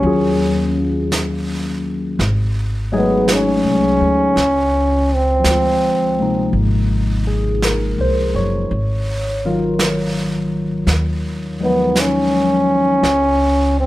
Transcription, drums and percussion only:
0.04 brush sweep soft
1.12 brush sweep soft
1.12 snare soft
1.12 hi-hat pedal medium
2.19 brush sweep soft
2.19 snare soft
3.28 brush sweep soft
3.28 snare soft
3.28 hi-hat pedal soft
4.37 brush sweep soft
4.37 snare soft
5.44 brush sweep soft
5.44 snare soft
5.44 hi-hat pedal medium
6.53 brush sweep soft
7.62 brush sweep soft
7.62 snare soft
7.62 hi-hat pedal soft
8.70 brush sweep soft
9.79 brush sweep soft
9.79 snare soft
9.79 hi-hat pedal soft
10.87 brush sweep soft
10.87 snare soft
11.96 brush sweep soft
11.96 snare soft
11.96 hi-hat pedal medium
13.03 brush sweep soft
13.03 snare soft

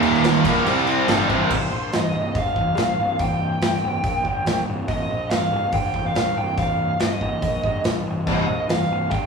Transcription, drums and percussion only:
0.03 crash medium
0.14 snare soft
0.24 snare loud
0.24 crash medium
0.45 kick loud
0.45 crash loud
0.66 crash medium
0.87 crash medium
1.08 snare loud
1.08 crash medium
1.29 kick medium
1.29 crash medium
1.51 kick loud
1.51 crash loud
1.93 snare loud
1.93 open hi-hat medium
2.35 kick loud
2.35 open hi-hat medium
2.56 kick medium
2.77 snare loud
2.77 open hi-hat soft
3.19 kick loud
3.19 open hi-hat medium
3.62 snare loud
3.62 open hi-hat medium
4.04 kick loud
4.04 open hi-hat medium
4.25 kick medium
4.46 snare loud
4.46 open hi-hat medium
4.57 snare soft
4.88 kick loud
4.88 open hi-hat medium
5.30 snare loud
5.30 open hi-hat medium
5.72 kick loud
5.72 open hi-hat medium
5.94 kick medium
6.15 snare loud
6.15 open hi-hat soft
6.58 kick loud
6.58 open hi-hat soft
7.00 snare loud
7.00 open hi-hat medium
7.21 kick medium
7.42 kick loud
7.42 open hi-hat medium
7.64 kick medium
7.84 snare loud
7.84 open hi-hat medium
8.27 kick loud
8.27 open hi-hat medium
8.69 snare loud
8.69 open hi-hat medium
9.11 kick loud
9.11 open hi-hat soft

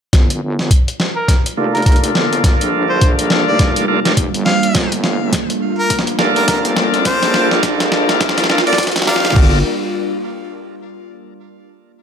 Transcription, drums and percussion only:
0.13 kick loud
0.13 snare soft
0.13 closed hi-hat medium
0.30 closed hi-hat medium
0.59 snare soft
0.71 kick medium
0.71 closed hi-hat medium
0.88 closed hi-hat medium
1.00 snare medium
1.28 kick loud
1.28 snare soft
1.28 closed hi-hat medium
1.46 closed hi-hat medium
1.75 closed hi-hat soft
1.77 closed hi-hat soft
1.82 kick medium
1.82 closed hi-hat soft
1.86 closed hi-hat medium
1.92 closed hi-hat soft
1.96 closed hi-hat soft
2.04 closed hi-hat medium
2.15 snare medium
2.33 closed hi-hat soft
2.44 kick loud
2.44 snare medium
2.44 closed hi-hat medium
2.61 closed hi-hat medium
3.01 kick loud
3.01 closed hi-hat medium
3.19 closed hi-hat medium
3.30 snare medium
3.59 kick loud
3.59 snare medium
3.59 closed hi-hat medium
3.76 closed hi-hat medium
4.05 snare medium
4.05 closed hi-hat soft
4.17 kick medium
4.17 closed hi-hat medium
4.34 closed hi-hat medium
4.46 snare medium
4.63 closed hi-hat soft
4.75 kick loud
4.75 snare medium
4.75 closed hi-hat medium
4.92 closed hi-hat medium
5.04 snare medium
5.33 kick loud
5.33 snare medium
5.33 closed hi-hat medium
5.50 closed hi-hat medium
5.90 kick loud
5.90 closed hi-hat medium
5.99 snare medium
6.07 closed hi-hat medium
6.19 snare medium
6.36 closed hi-hat soft
6.48 kick loud
6.48 snare medium
6.48 closed hi-hat medium
6.65 closed hi-hat medium
6.77 snare medium
6.94 closed hi-hat soft
7.05 kick loud
7.05 snare medium
7.05 closed hi-hat medium
7.23 snare medium
7.23 closed hi-hat medium
7.34 snare medium
7.51 snare medium
7.63 kick loud
7.63 snare loud
7.63 closed hi-hat medium
7.80 snare medium
7.80 closed hi-hat medium
7.92 snare loud
8.09 snare medium
8.09 closed hi-hat soft
8.21 kick loud
8.21 snare loud
8.21 closed hi-hat medium
8.29 snare medium
8.38 snare medium
8.38 closed hi-hat medium
8.44 snare medium
8.50 snare loud
8.58 snare medium
8.67 closed hi-hat soft
8.73 snare medium
8.78 kick loud
8.78 snare loud
8.78 closed hi-hat medium
8.83 closed hi-hat medium
8.87 snare medium
8.87 closed hi-hat soft
8.92 closed hi-hat soft
8.96 snare medium
8.96 closed hi-hat medium
8.98 snare medium
8.98 closed hi-hat soft
9.02 snare loud
9.02 closed hi-hat soft
9.05 snare medium
9.05 closed hi-hat soft
9.07 snare loud
9.16 snare medium
9.20 snare medium
9.25 snare loud
9.25 closed hi-hat soft
9.28 snare medium
9.30 snare loud
9.33 snare soft
9.36 kick loud
9.36 snare soft
9.36 crash medium
9.41 snare soft

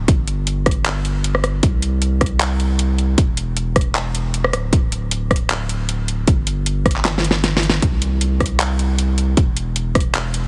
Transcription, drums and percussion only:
0.08 kick loud
0.08 closed hi-hat medium
0.28 closed hi-hat medium
0.47 closed hi-hat medium
0.66 kick medium
0.66 cross-stick medium
0.66 closed hi-hat soft
0.71 closed hi-hat medium
0.85 clap loud
0.85 closed hi-hat medium
1.05 closed hi-hat medium
1.24 closed hi-hat medium
1.35 cross-stick medium
1.44 cross-stick medium
1.44 closed hi-hat medium
1.63 kick loud
1.63 closed hi-hat medium
1.82 closed hi-hat medium
2.02 closed hi-hat medium
2.21 kick medium
2.21 cross-stick medium
2.21 closed hi-hat soft
2.26 closed hi-hat medium
2.40 clap loud
2.40 closed hi-hat medium
2.60 closed hi-hat medium
2.79 closed hi-hat medium
2.98 closed hi-hat medium
3.18 kick loud
3.18 closed hi-hat medium
3.37 closed hi-hat medium
3.57 closed hi-hat medium
3.76 kick medium
3.76 cross-stick medium
3.76 closed hi-hat soft
3.81 closed hi-hat medium
3.95 clap loud
3.95 closed hi-hat medium
4.15 closed hi-hat medium
4.34 closed hi-hat medium
4.44 cross-stick medium
4.53 cross-stick medium
4.53 closed hi-hat medium
4.73 kick loud
4.73 closed hi-hat medium
4.92 closed hi-hat medium
5.11 closed hi-hat medium
5.31 kick medium
5.31 cross-stick medium
5.31 closed hi-hat soft
5.36 closed hi-hat medium
5.50 clap loud
5.50 closed hi-hat medium
5.69 closed hi-hat medium
5.89 closed hi-hat medium
6.08 closed hi-hat medium
6.27 kick loud
6.27 closed hi-hat medium
6.47 closed hi-hat medium
6.66 closed hi-hat medium
6.86 kick medium
6.86 cross-stick medium
6.86 closed hi-hat soft
6.91 closed hi-hat medium
6.96 clap soft
7.05 snare medium
7.05 clap loud
7.05 closed hi-hat medium
7.18 snare medium
7.24 closed hi-hat medium
7.31 snare medium
7.44 snare medium
7.44 closed hi-hat medium
7.57 snare loud
7.63 closed hi-hat medium
7.70 snare loud
7.82 kick loud
7.82 closed hi-hat medium
8.02 closed hi-hat medium
8.21 closed hi-hat medium
8.40 kick medium
8.40 cross-stick medium
8.40 closed hi-hat soft
8.46 closed hi-hat medium
8.60 clap loud
8.60 closed hi-hat medium
8.79 closed hi-hat medium
8.99 closed hi-hat medium
9.18 closed hi-hat medium
9.37 kick loud
9.37 closed hi-hat medium
9.57 closed hi-hat medium
9.76 closed hi-hat medium
9.95 kick medium
9.95 cross-stick medium
9.95 closed hi-hat soft
10.00 closed hi-hat medium
10.15 clap loud
10.15 closed hi-hat medium
10.34 closed hi-hat medium

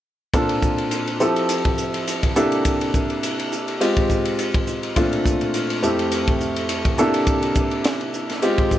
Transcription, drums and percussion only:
0.34 kick medium
0.34 hi-hat pedal medium
0.34 ride medium
0.49 ride medium
0.62 kick medium
0.62 hi-hat pedal medium
0.78 ride soft
0.91 hi-hat pedal medium
0.91 ride medium
1.07 ride soft
1.20 hi-hat pedal medium
1.36 ride soft
1.49 hi-hat pedal medium
1.49 ride medium
1.65 kick medium
1.65 ride soft
1.78 hi-hat pedal medium
1.94 ride medium
2.08 hi-hat pedal medium
2.08 ride medium
2.23 kick medium
2.23 ride medium
2.36 hi-hat pedal medium
2.52 ride soft
2.65 kick medium
2.65 hi-hat pedal medium
2.65 ride medium
2.81 ride soft
2.94 kick medium
2.94 hi-hat pedal medium
3.10 ride soft
3.23 hi-hat pedal medium
3.23 ride medium
3.39 ride soft
3.52 hi-hat pedal medium
3.68 ride soft
3.81 hi-hat pedal medium
3.81 ride medium
3.97 kick medium
3.97 ride soft
4.09 kick soft
4.09 hi-hat pedal medium
4.25 ride medium
4.39 hi-hat pedal medium
4.39 ride medium
4.54 kick medium
4.54 ride soft
4.67 hi-hat pedal medium
4.83 ride soft
4.96 kick medium
4.96 hi-hat pedal medium
4.96 ride medium
5.13 ride soft
5.26 kick medium
5.26 hi-hat pedal medium
5.41 ride soft
5.54 hi-hat pedal medium
5.54 ride medium
5.70 ride medium
5.83 hi-hat pedal medium
5.99 ride soft
6.12 hi-hat pedal medium
6.12 ride medium
6.28 kick medium
6.28 ride soft
6.41 hi-hat pedal medium
6.56 ride medium
6.69 hi-hat pedal medium
6.69 ride medium
6.85 kick medium
6.85 ride soft
6.98 hi-hat pedal medium
7.14 ride medium
7.27 kick medium
7.27 hi-hat pedal medium
7.27 ride medium
7.43 ride medium
7.55 kick medium
7.55 hi-hat pedal medium
7.71 ride soft
7.84 snare medium
7.84 hi-hat pedal medium
7.84 ride medium
8.01 ride soft
8.13 hi-hat pedal medium
8.30 snare soft
8.30 ride soft
8.42 hi-hat pedal medium
8.42 ride medium
8.58 kick medium
8.58 ride soft
8.71 kick soft
8.71 hi-hat pedal medium

